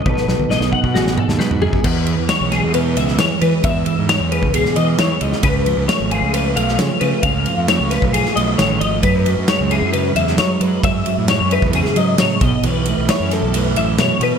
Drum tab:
CC |----------------|x---------------|----------------|----------------|
RD |----------------|--x-x-x-x-x-x-x-|x-x-x-x-x-x-x-x-|x-x-x-x-x-x-x-x-|
SD |-oo-oo--oo-oo---|----o-o----oo---|----o----o--o--o|----o------oo---|
T1 |o--o------------|----------------|----------------|----------------|
T2 |----------o-----|----------------|----------------|----------------|
FT |-------------oo-|----------------|----------------|----------------|
BD |o-----oo-------o|o---------------|o------o--------|o---------------|

CC |----------------|----------------|----------------|----------------|
RD |x-x-x-x-x-x-x-x-|x-x-x-x-x-x-x-x-|x-x-x-x-x-x-x-x-|x-x-x-x-x-x-x-x-|
SD |----o-o--o--o---|----o------oo---|----o----o--o---|----o-o-----o---|
T1 |----------------|----------------|----------------|----------------|
T2 |----------------|----------------|----------------|----------------|
FT |----------------|----------------|----------------|----------------|
BD |o------o--------|o---------------|o------o------o-|----------------|